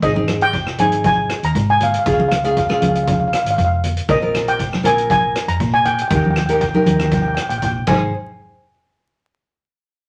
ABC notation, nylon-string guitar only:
X:1
M:4/4
L:1/16
Q:1/4=119
K:Ab
V:1 name="Nylon-string guitar"
[CEA] [CEA]3 z2 [CEA]4- [CEA] z4 z | [DFA]2 z [DFA] z [DFA]4- [DFA] z6 | [CFB] [CFB]3 z2 [CFB]4- [CFB] z4 z | [EGB]2 z [EGB] z [EGB]4- [EGB] z4 [EAc]2 |
z16 |]